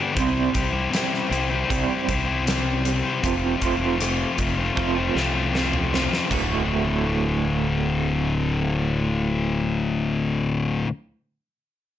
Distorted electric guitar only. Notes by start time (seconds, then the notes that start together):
Already playing: G2 D3 B3 D4 G4
0.00 G3
0.14 C3 G3 C4 E4 G4 C5
0.53 C4 E4 G4 C5
0.72 C4 E4 G4 C5
0.91 C3 G3 C4 E4 G4 C5
1.29 C4 E4 G4 C5
1.49 C4 E4 G4 C5
1.88 C4 E4 G4 C5
2.06 C4 E4 G4 C5
2.25 C4 E4 G4 C5
2.45 C3 G3 C4 E4 G4 C5
3.03 C4 E4 G4 C5
3.21 F2 C3 F3 A3 C4 F4
3.61 F3 A3 C4 F4
3.80 F3 A3 C4 F4
3.99 F2 C3 F3 A3 C4 F4
4.38 F3 A3 C4 F4
4.57 F3 A3 C4 F4
4.95 F3 A3 C4 F4
5.15 F3 A3 C4 F4
5.33 F3 A3 C4 F4
5.52 F2 C3 F3 A3 C4 F4
6.09 F3 A3 C4 F4
6.28 D2 A2 D3 A3
6.32 F#4